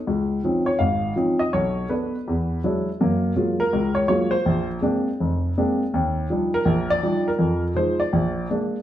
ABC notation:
X:1
M:4/4
L:1/8
Q:"Swing" 1/4=163
K:Bbmix
V:1 name="Grand piano"
z3 _d f2 z e | _d2 =B4 z2 | z3 B2 _d d c- | c z6 z |
z3 B2 d2 B- | B z c d3 z2 |]
V:2 name="Grand piano" clef=bass
_D,,2 [F,C_DE] z A,,,2 [F,CDE] z | =B,,,2 [=A,=B,D] z =E,,2 [^F,^G,D=E] z | [_G,,B,]2 [_G,A,B,F] z _D,,2 [G,A,B,F] z | B,,,2 [A,B,CD] z F,,,2 [A,B,CD] z |
E,,2 [F,G,DE] z B,,,2 [F,G,DE] z | F,,2 [F,A,E] z B,,,2 [A,B,D] z |]